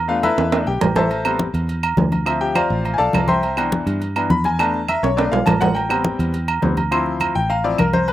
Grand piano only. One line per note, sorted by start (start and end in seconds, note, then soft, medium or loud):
0.08 0.28 A3 medium
0.08 0.28 B3 medium
0.08 0.28 D4 medium
0.08 0.23 F4 medium
0.08 0.23 F5 medium
0.23 0.64 E4 medium
0.23 0.64 A4 medium
0.23 0.64 B4 medium
0.23 0.64 E5 medium
0.52 0.65 A3 soft
0.52 0.66 B3 soft
0.52 0.66 D4 medium
0.67 0.94 G4 medium
0.67 0.94 G5 medium
0.96 1.37 A4 medium
0.96 1.37 C5 medium
0.96 1.37 E5 medium
0.96 1.36 A5 loud
1.25 1.44 G3 medium
1.25 1.45 B3 soft
1.25 1.45 C4 medium
2.26 3.39 F3 medium
2.26 3.39 C4 soft
2.26 3.27 E5 medium
2.41 2.55 G4 medium
2.41 2.55 G5 medium
2.55 2.96 F4 medium
2.55 2.96 C5 medium
2.55 2.96 D5 medium
2.55 2.96 F5 medium
2.94 2.96 G#5 medium
2.98 3.26 A4 medium
2.98 3.26 D5 medium
2.98 3.26 F5 medium
2.98 3.26 A5 loud
3.28 3.69 C5 medium
3.28 3.69 E5 medium
3.28 3.69 G5 medium
3.28 3.69 C6 medium
3.57 3.99 E3 medium
3.57 3.99 B3 soft
3.57 3.99 D4 medium
4.16 4.29 E3 soft
4.16 4.29 B3 medium
4.16 4.30 D4 medium
4.30 4.44 B5 medium
4.45 4.59 G#5 medium
4.59 4.79 A3 medium
4.59 4.79 B3 medium
4.59 4.79 D4 medium
4.59 4.87 A5 medium
4.89 5.03 E5 medium
5.03 5.17 C#5 medium
5.17 5.30 A3 medium
5.17 5.30 B3 soft
5.17 5.31 D4 medium
5.17 5.32 D5 medium
5.32 5.46 F5 medium
5.46 5.60 A5 medium
5.61 5.75 F#5 medium
5.75 6.58 G5 medium
5.89 6.31 G3 medium
5.89 6.31 B3 medium
5.89 6.32 C4 medium
6.62 6.75 G3 soft
6.62 6.76 B3 soft
6.62 6.76 C4 medium
6.91 7.33 F3 medium
6.91 7.33 C4 medium
6.91 7.34 E4 medium
6.91 7.32 C6 medium
7.35 7.50 G5 loud
7.50 7.64 F5 medium
7.64 7.77 F3 medium
7.64 7.78 C4 medium
7.64 7.78 E4 medium
7.64 7.79 D5 medium
7.79 7.93 A#4 medium
7.94 8.08 C5 medium
8.08 8.13 B4 medium